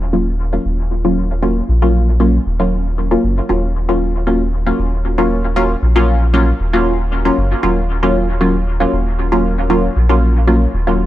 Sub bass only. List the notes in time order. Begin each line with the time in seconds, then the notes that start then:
Already playing: D#1
0.65 D#1
1.68 A#1
2.46 D#1
3.24 F#1
3.49 D#1
4.79 D#1
5.82 A#1
6.60 D#1
7.37 F#1
7.63 D#1
8.93 D#1
9.96 A#1
10.74 D#1